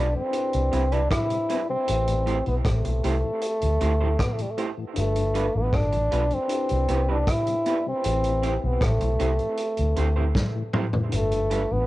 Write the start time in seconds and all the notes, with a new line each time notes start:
Already playing: B1 D4 F4 A4 B4
0.15 G2 D3 C4
0.31 D4 E4 G4, closed hi-hat
0.37 B4
0.53 C2 C3 G3, closed hi-hat
0.72 C2 G3 B3 C4 E4 B4, closed hi-hat
0.92 C3 G3 C4 D4 E4 B4, closed hi-hat
1.11 E4, kick, cross-stick, closed hi-hat
1.30 C3 G3, closed hi-hat
1.49 G3 B3 C4 E4 B4, closed hi-hat
1.69 C3 G3 C4
1.85 A1 C4 E4 G4, closed hi-hat
1.91 B4
2.07 A2 E3, closed hi-hat
2.26 A3 C4 E4 G4 C5, closed hi-hat
2.46 B1 A2 E3 B3, closed hi-hat
2.65 A1 A3, kick, cross-stick, closed hi-hat
2.85 B1 A2 E3, muted clean electric guitar stroke, closed hi-hat
3.04 C2 A3 C4 E4 G4 C5, closed hi-hat
3.24 A2 E3
3.41 closed hi-hat
3.61 D2 A2 E3, closed hi-hat
3.81 D2 A3 C4 E4 G4 C5, closed hi-hat
4.00 A2 E3 A3 E4 G4 C5
4.19 kick, cross-stick, closed hi-hat
4.23 B3
4.33 A3
4.38 A2 E3 G3, closed hi-hat
4.50 A3
4.57 A3 C4 E4 G4 C5, closed hi-hat
4.77 A2 E3
4.94 G1 D4 F4, closed hi-hat
4.98 A3 A4 B4
5.16 G2 D3, closed hi-hat
5.34 G3 B3 D4 F4 B4, closed hi-hat
5.55 A1 G2 D3 B3
5.73 G1 D4, kick, cross-stick, closed hi-hat
5.92 A1 G2 D3, muted clean electric guitar stroke, closed hi-hat
6.12 B1 G3 B3 D4 F4 B4, closed hi-hat
6.31 G2 D3 C4, closed hi-hat
6.48 D4 E4 G4, closed hi-hat
6.54 B4
6.69 C2 C3 G3, closed hi-hat
6.88 C2 B3 C4 E4 G4 B4, closed hi-hat
7.08 C3 G3 B3 D4 E4 G4 B4
7.27 E4, kick, cross-stick, closed hi-hat
7.46 C3 G3, closed hi-hat
7.66 B3 C4 E4 G4 B4, closed hi-hat
7.86 C3 G3 C4
8.02 A1 C4 E4 G4, closed hi-hat
8.08 B4
8.24 A2 E3, closed hi-hat
8.43 A3 C4 E4 G4 C5, closed hi-hat
8.63 B1 A2 E3 B3
8.81 A1 A3, kick, cross-stick, closed hi-hat
9.00 B1 A2 E3, muted clean electric guitar stroke, closed hi-hat
9.20 C2 A3 C4 E4 G4 C5, closed hi-hat
9.39 A2 E3, closed hi-hat
9.57 closed hi-hat
9.77 D2 A2 E3, closed hi-hat
9.96 D2 A3 C4 E4 G4 C5, closed hi-hat
10.16 A2 E3 C4 E4 G4 C5
10.35 kick, snare
10.56 A2 E3
10.73 A3 C4 E4 G4 C5, mid tom
10.93 A2 E3, floor tom
11.09 G1 D4 F4, closed hi-hat
11.13 A3 A4 B4
11.31 G2 D3, closed hi-hat
11.51 G3 B3 D4 F4 B4, closed hi-hat
11.71 A1 G2 D3 B3